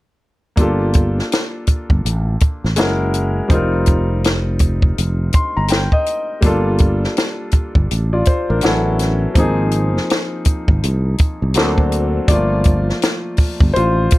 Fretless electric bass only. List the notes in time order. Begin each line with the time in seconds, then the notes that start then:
0.58 G1
1.69 muted fretless electric bass stroke
1.91 G1
2.05 A1
2.64 A1
2.78 F#1
3.51 F1
4.99 F1
5.57 G1
6.44 G1
7.54 muted fretless electric bass stroke
7.76 G1
7.92 A1
8.50 A1
8.64 A1
9.36 G#1
10.47 muted fretless electric bass stroke
10.69 G#1
10.84 C2
11.42 C2
11.57 D2
12.29 G1
13.39 muted fretless electric bass stroke
13.62 G1
13.77 A1